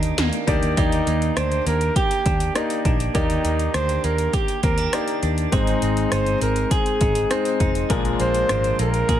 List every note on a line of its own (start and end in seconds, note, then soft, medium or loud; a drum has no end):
0.00 0.11 D#2 medium
0.00 0.73 D#3 medium
0.00 0.77 D#3 medium
0.00 1.40 D#3 medium
0.00 0.18 A#3 medium
0.00 0.47 A#3 medium
0.00 0.47 D4 medium
0.00 0.47 D#4 medium
0.00 0.48 D#4 medium
0.00 0.48 G4 medium
0.00 0.73 G4 medium
0.00 0.77 G4 medium
0.00 0.48 D5 medium
0.00 0.75 D5 medium
0.00 closed hi-hat medium
0.18 0.29 D#2 medium
0.18 0.77 A#3 medium
0.18 snare loud
0.18 closed hi-hat loud
0.33 closed hi-hat medium
0.47 0.59 D2 medium
0.47 0.67 A#3 medium
0.47 1.36 D4 medium
0.47 0.68 D#4 medium
0.47 0.68 G4 medium
0.47 0.68 D5 medium
0.47 kick medium
0.47 closed hi-hat medium
0.63 0.74 D#2 medium
0.63 closed hi-hat soft
0.77 1.00 D#2 loud
0.77 1.62 D#3 medium
0.77 1.58 A#3 medium
0.77 1.06 A#3 medium
0.77 1.58 D#4 medium
0.77 1.39 D#4 medium
0.77 1.58 G4 medium
0.77 1.95 G4 medium
0.77 1.58 D5 medium
0.77 kick loud
0.77 closed hi-hat medium
0.92 closed hi-hat soft
1.07 1.29 D#2 medium
1.07 1.65 A#3 medium
1.07 closed hi-hat medium
1.22 closed hi-hat soft
1.37 1.59 D2 medium
1.37 2.25 D4 medium
1.37 1.67 C5 medium
1.37 cross-stick loud
1.37 closed hi-hat medium
1.52 closed hi-hat soft
1.66 1.89 D#2 medium
1.66 2.54 A#3 medium
1.66 1.95 A#4 medium
1.66 closed hi-hat medium
1.81 closed hi-hat medium
1.96 3.14 G4 medium
1.96 2.52 G4 loud
1.96 kick medium
1.96 closed hi-hat medium
2.11 closed hi-hat soft
2.26 2.48 D#2 medium
2.26 2.84 D4 medium
2.26 kick medium
2.26 closed hi-hat medium
2.40 closed hi-hat medium
2.55 2.95 A#3 medium
2.55 3.14 A#3 medium
2.55 2.96 D#4 medium
2.55 2.97 D#4 medium
2.55 2.96 G4 medium
2.55 2.96 D5 medium
2.55 cross-stick loud
2.55 closed hi-hat medium
2.70 closed hi-hat medium
2.85 3.07 A#1 medium
2.85 3.73 D4 medium
2.85 kick medium
2.85 closed hi-hat medium
3.00 closed hi-hat soft
3.14 3.37 D#2 medium
3.14 4.00 D#3 medium
3.14 3.95 A#3 medium
3.14 3.43 A#3 medium
3.14 3.71 D#4 medium
3.14 3.95 G4 medium
3.14 4.32 G4 medium
3.14 3.96 D5 medium
3.14 kick loud
3.14 closed hi-hat medium
3.30 closed hi-hat soft
3.45 3.67 D#2 medium
3.45 4.03 A#3 medium
3.45 closed hi-hat medium
3.59 closed hi-hat soft
3.74 3.97 D2 medium
3.74 4.63 D4 medium
3.74 4.07 C5 medium
3.74 cross-stick loud
3.74 closed hi-hat medium
3.89 closed hi-hat soft
4.04 4.26 D#2 medium
4.04 4.92 A#3 medium
4.04 4.36 A#4 medium
4.04 closed hi-hat medium
4.18 closed hi-hat soft
4.33 5.52 G4 medium
4.33 4.64 G4 medium
4.33 kick medium
4.33 closed hi-hat medium
4.48 closed hi-hat soft
4.63 4.86 D#2 medium
4.63 4.78 C4 medium
4.63 5.19 A#4 medium
4.63 kick medium
4.63 closed hi-hat medium
4.78 5.22 D4 soft
4.78 closed hi-hat medium
4.93 5.33 A#3 medium
4.93 5.52 A#3 medium
4.93 5.33 D#4 medium
4.93 5.34 G4 medium
4.93 5.34 D5 medium
4.93 cross-stick loud
4.93 closed hi-hat medium
5.08 closed hi-hat medium
5.23 5.45 D#2 medium
5.23 5.58 D4 medium
5.23 closed hi-hat medium
5.38 closed hi-hat soft
5.52 5.75 G#1 loud
5.52 6.38 G#2 medium
5.52 6.33 G#3 medium
5.52 6.33 C4 medium
5.52 5.81 C4 medium
5.52 6.33 D#4 medium
5.52 6.14 D#4 medium
5.52 6.71 G#4 medium
5.52 6.33 C5 medium
5.52 kick loud
5.52 closed hi-hat medium
5.67 closed hi-hat soft
5.82 6.04 G#1 medium
5.82 6.40 C4 medium
5.82 closed hi-hat medium
5.97 closed hi-hat soft
6.12 6.34 G1 medium
6.12 7.00 D#4 medium
6.12 6.42 C5 loud
6.12 cross-stick loud
6.12 closed hi-hat medium
6.26 closed hi-hat soft
6.41 6.64 G#1 medium
6.41 7.30 C4 medium
6.41 6.74 A#4 medium
6.41 closed hi-hat medium
6.56 closed hi-hat medium
6.71 7.90 G#4 medium
6.71 7.33 G#4 loud
6.71 kick medium
6.71 closed hi-hat medium
6.86 closed hi-hat soft
7.01 7.23 G#1 medium
7.01 7.59 D#4 medium
7.01 kick medium
7.01 closed hi-hat medium
7.15 closed hi-hat medium
7.30 7.71 G#3 medium
7.30 7.71 C4 medium
7.30 7.96 C4 medium
7.30 7.71 D#4 medium
7.30 7.76 D#4 medium
7.30 7.71 C5 medium
7.30 cross-stick loud
7.30 closed hi-hat medium
7.45 closed hi-hat medium
7.60 7.83 F1 medium
7.60 7.96 D#4 medium
7.60 kick medium
7.60 closed hi-hat medium
7.75 closed hi-hat soft
7.90 8.12 A#1 loud
7.90 8.75 A#2 medium
7.90 9.20 F3 medium
7.90 8.70 G#3 medium
7.90 8.71 D4 medium
7.90 8.71 F4 medium
7.90 9.08 G#4 medium
7.90 8.71 A#4 medium
7.90 kick loud
7.90 closed hi-hat medium
8.05 closed hi-hat soft
8.20 8.42 A#1 medium
8.20 8.79 A#3 medium
8.20 8.76 C5 loud
8.20 closed hi-hat medium
8.34 closed hi-hat soft
8.49 8.72 G#1 medium
8.49 9.20 D4 medium
8.49 cross-stick loud
8.49 closed hi-hat medium
8.64 closed hi-hat soft
8.79 9.02 A#1 medium
8.79 9.20 A#3 medium
8.79 9.20 A#4 medium
8.79 closed hi-hat medium
8.94 closed hi-hat soft
9.09 9.20 A#2 loud
9.09 9.20 G#4 medium
9.09 kick medium
9.09 closed hi-hat medium